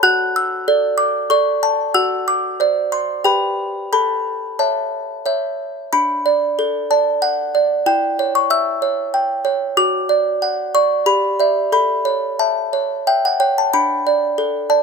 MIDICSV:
0, 0, Header, 1, 2, 480
1, 0, Start_track
1, 0, Key_signature, 2, "major"
1, 0, Tempo, 641711
1, 19, Time_signature, 3, 2, 24, 8
1, 1940, Tempo, 665188
1, 4820, Tempo, 641711
1, 8180, Tempo, 658617
1, 10914, End_track
2, 0, Start_track
2, 0, Title_t, "Music box"
2, 0, Program_c, 0, 10
2, 22, Note_on_c, 0, 66, 68
2, 22, Note_on_c, 0, 90, 111
2, 25, Note_on_c, 0, 78, 58
2, 249, Note_off_c, 0, 90, 0
2, 270, Note_on_c, 0, 88, 94
2, 481, Note_off_c, 0, 66, 0
2, 483, Note_off_c, 0, 78, 0
2, 507, Note_on_c, 0, 69, 49
2, 508, Note_on_c, 0, 74, 50
2, 719, Note_off_c, 0, 88, 0
2, 730, Note_on_c, 0, 86, 91
2, 948, Note_off_c, 0, 69, 0
2, 948, Note_off_c, 0, 74, 0
2, 961, Note_off_c, 0, 86, 0
2, 972, Note_on_c, 0, 85, 91
2, 973, Note_on_c, 0, 69, 42
2, 979, Note_on_c, 0, 74, 45
2, 1204, Note_off_c, 0, 85, 0
2, 1218, Note_on_c, 0, 81, 86
2, 1426, Note_off_c, 0, 69, 0
2, 1428, Note_off_c, 0, 74, 0
2, 1448, Note_off_c, 0, 81, 0
2, 1453, Note_on_c, 0, 78, 53
2, 1454, Note_on_c, 0, 88, 102
2, 1455, Note_on_c, 0, 66, 58
2, 1686, Note_off_c, 0, 88, 0
2, 1703, Note_on_c, 0, 86, 73
2, 1924, Note_off_c, 0, 78, 0
2, 1925, Note_off_c, 0, 66, 0
2, 1944, Note_on_c, 0, 72, 40
2, 1949, Note_on_c, 0, 74, 45
2, 2160, Note_off_c, 0, 86, 0
2, 2177, Note_on_c, 0, 84, 72
2, 2386, Note_off_c, 0, 72, 0
2, 2388, Note_off_c, 0, 74, 0
2, 2404, Note_off_c, 0, 84, 0
2, 2409, Note_on_c, 0, 79, 42
2, 2410, Note_on_c, 0, 67, 48
2, 2413, Note_on_c, 0, 71, 35
2, 2417, Note_on_c, 0, 83, 66
2, 2870, Note_off_c, 0, 71, 0
2, 2872, Note_off_c, 0, 79, 0
2, 2881, Note_off_c, 0, 83, 0
2, 2883, Note_off_c, 0, 67, 0
2, 2901, Note_on_c, 0, 81, 41
2, 2901, Note_on_c, 0, 83, 71
2, 2904, Note_on_c, 0, 69, 46
2, 3367, Note_off_c, 0, 83, 0
2, 3372, Note_off_c, 0, 81, 0
2, 3374, Note_off_c, 0, 69, 0
2, 3382, Note_on_c, 0, 73, 34
2, 3382, Note_on_c, 0, 81, 52
2, 3385, Note_on_c, 0, 76, 35
2, 3833, Note_off_c, 0, 73, 0
2, 3835, Note_off_c, 0, 76, 0
2, 3861, Note_on_c, 0, 73, 31
2, 3866, Note_on_c, 0, 76, 34
2, 4073, Note_off_c, 0, 81, 0
2, 4312, Note_off_c, 0, 73, 0
2, 4315, Note_off_c, 0, 76, 0
2, 4344, Note_on_c, 0, 83, 94
2, 4347, Note_on_c, 0, 62, 55
2, 4583, Note_on_c, 0, 74, 43
2, 4821, Note_on_c, 0, 69, 46
2, 4967, Note_off_c, 0, 74, 0
2, 5034, Note_off_c, 0, 83, 0
2, 5060, Note_on_c, 0, 81, 63
2, 5062, Note_on_c, 0, 74, 44
2, 5209, Note_off_c, 0, 69, 0
2, 5293, Note_off_c, 0, 81, 0
2, 5295, Note_on_c, 0, 78, 77
2, 5447, Note_off_c, 0, 74, 0
2, 5540, Note_on_c, 0, 74, 44
2, 5754, Note_off_c, 0, 62, 0
2, 5759, Note_off_c, 0, 78, 0
2, 5776, Note_on_c, 0, 64, 66
2, 5777, Note_on_c, 0, 79, 84
2, 5781, Note_off_c, 0, 74, 0
2, 6022, Note_on_c, 0, 73, 47
2, 6122, Note_off_c, 0, 79, 0
2, 6142, Note_on_c, 0, 85, 88
2, 6255, Note_on_c, 0, 76, 47
2, 6258, Note_off_c, 0, 85, 0
2, 6258, Note_on_c, 0, 88, 94
2, 6400, Note_off_c, 0, 73, 0
2, 6492, Note_on_c, 0, 73, 49
2, 6634, Note_off_c, 0, 76, 0
2, 6730, Note_on_c, 0, 79, 51
2, 6873, Note_off_c, 0, 73, 0
2, 6941, Note_off_c, 0, 88, 0
2, 6961, Note_on_c, 0, 73, 55
2, 7112, Note_off_c, 0, 79, 0
2, 7175, Note_off_c, 0, 64, 0
2, 7203, Note_on_c, 0, 86, 109
2, 7204, Note_on_c, 0, 66, 61
2, 7205, Note_off_c, 0, 73, 0
2, 7444, Note_on_c, 0, 74, 53
2, 7690, Note_on_c, 0, 78, 50
2, 7835, Note_off_c, 0, 74, 0
2, 7904, Note_off_c, 0, 86, 0
2, 7932, Note_on_c, 0, 85, 94
2, 7933, Note_on_c, 0, 74, 52
2, 8079, Note_off_c, 0, 78, 0
2, 8146, Note_off_c, 0, 66, 0
2, 8167, Note_off_c, 0, 85, 0
2, 8168, Note_on_c, 0, 67, 58
2, 8169, Note_on_c, 0, 83, 94
2, 8177, Note_off_c, 0, 74, 0
2, 8412, Note_on_c, 0, 74, 42
2, 8418, Note_on_c, 0, 76, 49
2, 8631, Note_off_c, 0, 74, 0
2, 8634, Note_off_c, 0, 76, 0
2, 8634, Note_off_c, 0, 83, 0
2, 8638, Note_off_c, 0, 67, 0
2, 8651, Note_on_c, 0, 69, 54
2, 8654, Note_on_c, 0, 83, 102
2, 8890, Note_on_c, 0, 73, 45
2, 9124, Note_off_c, 0, 83, 0
2, 9140, Note_on_c, 0, 76, 46
2, 9140, Note_on_c, 0, 81, 70
2, 9286, Note_off_c, 0, 73, 0
2, 9386, Note_on_c, 0, 73, 41
2, 9531, Note_off_c, 0, 76, 0
2, 9608, Note_off_c, 0, 81, 0
2, 9634, Note_on_c, 0, 76, 47
2, 9635, Note_on_c, 0, 79, 75
2, 9754, Note_off_c, 0, 79, 0
2, 9764, Note_on_c, 0, 78, 70
2, 9775, Note_off_c, 0, 73, 0
2, 9872, Note_on_c, 0, 79, 76
2, 9873, Note_on_c, 0, 73, 43
2, 9880, Note_off_c, 0, 78, 0
2, 9994, Note_off_c, 0, 79, 0
2, 10005, Note_on_c, 0, 81, 75
2, 10020, Note_off_c, 0, 76, 0
2, 10083, Note_off_c, 0, 69, 0
2, 10115, Note_off_c, 0, 73, 0
2, 10117, Note_on_c, 0, 83, 99
2, 10118, Note_on_c, 0, 62, 61
2, 10120, Note_off_c, 0, 81, 0
2, 10358, Note_on_c, 0, 74, 44
2, 10588, Note_on_c, 0, 69, 48
2, 10732, Note_off_c, 0, 74, 0
2, 10795, Note_off_c, 0, 83, 0
2, 10819, Note_on_c, 0, 74, 49
2, 10819, Note_on_c, 0, 81, 70
2, 10914, Note_off_c, 0, 62, 0
2, 10914, Note_off_c, 0, 69, 0
2, 10914, Note_off_c, 0, 74, 0
2, 10914, Note_off_c, 0, 81, 0
2, 10914, End_track
0, 0, End_of_file